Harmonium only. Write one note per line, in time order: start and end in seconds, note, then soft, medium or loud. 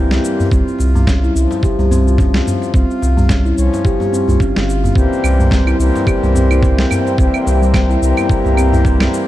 0.00 0.48 E3 medium
0.00 0.48 G3 medium
0.00 0.49 A#3 medium
0.00 0.49 C4 medium
0.00 0.50 G4 medium
0.54 1.33 F4 loud
1.38 2.72 F3 medium
2.76 3.55 F4 loud
3.57 4.39 F3 medium
3.57 4.38 C#4 medium
4.42 4.94 F4 medium
4.93 5.75 E3 medium
4.93 5.76 G3 medium
4.93 5.76 A#3 medium
4.93 5.77 C4 medium
4.97 5.77 G4 loud
5.77 7.14 E3 medium
5.77 7.15 G3 medium
5.77 7.15 A#3 medium
5.77 7.16 C4 medium
5.77 7.16 G4 medium
7.17 7.98 E3 medium
7.17 7.98 G3 medium
7.17 7.99 A#3 medium
7.17 8.00 C4 medium
7.21 8.00 G4 medium
7.99 9.28 E3 medium
7.99 9.28 G3 medium
7.99 9.28 A#3 medium
7.99 9.28 C4 medium
7.99 9.28 G4 loud